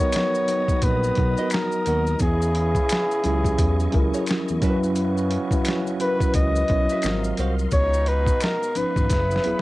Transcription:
Already playing: trombone section D#3 B3 F#4, tonewheel organ B3 D#5 A#5 D#6, flugelhorn C#5
0.00 tine electric piano F#3 B3 D#4 A#4, maracas
0.12 finger snap, snare, closed hi-hat, maracas
0.35 maracas
0.48 tine electric piano F#3 B3 D#4 B4, closed hi-hat, maracas
0.68 kick, maracas
0.82 analog synth bass A#1, flugelhorn B4, kick, closed hi-hat, maracas
1.04 maracas
1.15 analog synth bass B1, tine electric piano F#3 B3 D#4 F#4, kick, closed hi-hat
1.37 nylon-string guitar F#4 A#4 D#5, maracas
1.50 flugelhorn A#4, finger snap, closed hi-hat, maracas
1.54 snare
1.72 maracas
1.86 analog synth bass D#2, nylon-string guitar F#4 A#4 D#5, closed hi-hat, maracas
2.07 maracas
2.19 analog synth bass E2, trombone section C#3 B3 E4, tonewheel organ E4 G#4 C#6, flugelhorn G#4, kick, closed hi-hat, maracas
2.42 maracas
2.55 closed hi-hat
2.75 kick, maracas
2.89 finger snap, snare, closed hi-hat, maracas
3.11 maracas
3.24 analog synth bass C#2, tine electric piano F#3 C#4 E4 G4, closed hi-hat, maracas
3.32 tine electric piano G#4
3.44 kick, maracas
3.58 analog synth bass E2, kick, closed hi-hat, maracas
3.80 maracas
3.92 analog synth bass C#2, tine electric piano F#3 C#4 E4 A#4, kick, closed hi-hat
4.14 nylon-string guitar F#4 G#4 C#5, maracas
4.26 finger snap, closed hi-hat, maracas
4.31 snare
4.48 analog synth bass E2, maracas
4.61 analog synth bass F#2, trombone section C#3 B3 F#4, tine electric piano F#3 C#4 E4 A#4, nylon-string guitar F#4 B4 E5, tonewheel organ B4, kick, closed hi-hat, maracas
4.70 tine electric piano B4
4.83 maracas
4.96 closed hi-hat, maracas
5.17 maracas
5.31 closed hi-hat
5.51 tine electric piano F#3 C#4 E4 F#4, kick, maracas
5.65 finger snap, snare, closed hi-hat, maracas
5.87 maracas
5.99 tine electric piano F#3 C#4 E4 A#4, flugelhorn B4, closed hi-hat, maracas
6.08 tine electric piano B4
6.20 kick, maracas
6.34 analog synth bass C#2, flugelhorn D#5, kick, closed hi-hat, maracas
6.56 maracas
6.68 analog synth bass B1, tine electric piano F#3 C#4 E4 C#5, kick, closed hi-hat
6.89 nylon-string guitar F#4 B4 E5, maracas
7.02 analog synth bass G#1, trombone section C3 A#3 F4, tine electric piano F#3 C4 F4 A#4, tonewheel organ A#4 F5 C6, finger snap, closed hi-hat, maracas
7.06 snare
7.24 maracas
7.37 analog synth bass C2, nylon-string guitar F#4 C5 F5, closed hi-hat, maracas
7.59 maracas
7.71 analog synth bass C#2, trombone section B2 G#3 D#4, tonewheel organ B3 D#5 C#6, flugelhorn C#5, kick, closed hi-hat, maracas
7.93 maracas
8.06 flugelhorn B4, closed hi-hat
8.27 kick, maracas
8.41 flugelhorn A#4, finger snap, snare, closed hi-hat, maracas
8.63 maracas
8.75 analog synth bass G#1, tine electric piano F3 C#4 D#4 B4, flugelhorn B4, closed hi-hat, maracas
8.96 analog synth bass G#1, kick, maracas
9.10 analog synth bass F#1, trombone section C#3 B3 E4, tonewheel organ G#4 E5 F#5 B5, kick, snare, closed hi-hat, maracas
9.31 maracas
9.36 snare
9.44 analog synth bass E1, tine electric piano F#3 B3 E4 G#4, closed hi-hat

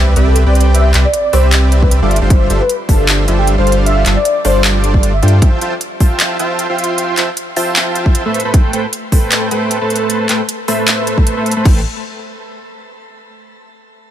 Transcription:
Already playing: sub bass C2, supersaw synth C4 G4 B4 D5 E5, impact
0.16 sub bass C2, supersaw synth C4 G4 B4 D5 E5, closed hi-hat
0.27 soft synth lead A4
0.36 closed hi-hat
0.46 sub bass C2, supersaw synth C4 G4 B4 D5 G5, soft synth lead D5
0.55 closed hi-hat
0.61 closed hi-hat
0.75 soft synth lead E5, closed hi-hat
0.94 sub bass C2, supersaw synth C4 G4 B4 D5 E5, clap, closed hi-hat
1.05 soft synth lead D5
1.14 closed hi-hat
1.33 sub bass C2, supersaw synth C4 G4 B4 D5 E5, soft synth lead C5, open hi-hat
1.52 clap, closed hi-hat
1.72 closed hi-hat
1.83 soft synth lead B4, kick
1.91 closed hi-hat
2.02 sub bass G1, supersaw synth G3 D4 F4 A4 C5 D5, soft synth lead E5
2.11 closed hi-hat
2.16 closed hi-hat
2.21 sub bass G1, supersaw synth G3 D4 F4 A4 C5 G5
2.30 sub bass G1, supersaw synth G3 D4 F4 A4 C5 E5, soft synth lead C5, kick, closed hi-hat
2.50 sub bass G1, supersaw synth G3 D4 F4 A4 C5 E5, closed hi-hat
2.61 soft synth lead B4
2.69 closed hi-hat
2.89 sub bass G1, supersaw synth G3 D4 F4 A4 C5 E5, soft synth lead A4, kick, open hi-hat
3.09 clap, closed hi-hat
3.28 sub bass G1, supersaw synth G3 D4 F4 A4 C5 E5, closed hi-hat
3.38 soft synth lead G4
3.47 closed hi-hat
3.58 sub bass G1, supersaw synth G3 D4 F4 A4 C5 F5, soft synth lead C5
3.67 closed hi-hat
3.72 closed hi-hat
3.86 soft synth lead E5, closed hi-hat
4.06 sub bass G1, supersaw synth G3 D4 F4 A4 C5 E5, clap, closed hi-hat
4.16 soft synth lead D5
4.25 closed hi-hat
4.45 sub bass G1, supersaw synth G3 D4 F4 A4 C5 D5, soft synth lead C5, open hi-hat
4.64 clap, closed hi-hat
4.84 closed hi-hat
4.94 soft synth lead D5, kick
5.03 closed hi-hat
5.14 soft synth lead E5
5.22 sub bass G2, supersaw synth G3 D4 F4 A4 C5 G5, closed hi-hat
5.28 closed hi-hat
5.42 supersaw synth F4 C5 E5 G5 A5, kick, closed hi-hat
5.61 supersaw synth F4 C5 E5 G5 A5, closed hi-hat
5.81 closed hi-hat
6.00 supersaw synth F4 C5 E5 G5 A5, kick, open hi-hat
6.20 clap, closed hi-hat
6.39 supersaw synth F4 C5 E5 G5 A5, closed hi-hat
6.59 closed hi-hat
6.70 supersaw synth F4 C5 E5 G5 C6
6.78 closed hi-hat
6.84 closed hi-hat
6.98 closed hi-hat
7.17 supersaw synth F4 C5 E5 G5 A5, clap, closed hi-hat
7.37 closed hi-hat
7.56 supersaw synth F4 C5 E5 G5 A5, open hi-hat
7.76 clap, closed hi-hat
7.96 closed hi-hat
8.06 kick
8.15 closed hi-hat
8.25 supersaw synth A3 A4 B4 C5 E5
8.34 closed hi-hat
8.40 closed hi-hat
8.45 supersaw synth A3 A4 B4 C5 B5
8.54 supersaw synth A3 A4 B4 C5 G5, kick, closed hi-hat
8.73 supersaw synth A3 A4 B4 C5 G5, closed hi-hat
8.93 closed hi-hat
9.12 supersaw synth A3 A4 B4 C5 G5, kick, open hi-hat
9.32 clap, closed hi-hat
9.51 supersaw synth A3 A4 B4 C5 G5, closed hi-hat
9.71 closed hi-hat
9.81 supersaw synth A3 A4 B4 C5 A5
9.90 closed hi-hat
9.96 closed hi-hat
10.10 closed hi-hat
10.29 supersaw synth A3 A4 B4 C5 G5, clap, closed hi-hat
10.49 closed hi-hat
10.68 supersaw synth A3 A4 B4 C5 E5, open hi-hat
10.88 clap, closed hi-hat
11.07 closed hi-hat
11.18 kick
11.27 closed hi-hat
11.37 supersaw synth A3 A4 B4 C5 E5
11.46 closed hi-hat
11.51 closed hi-hat
11.57 supersaw synth A3 A4 B4 C5 B5
11.65 sub bass A1, supersaw synth A3 A4 B4 C5 G5, kick, crash

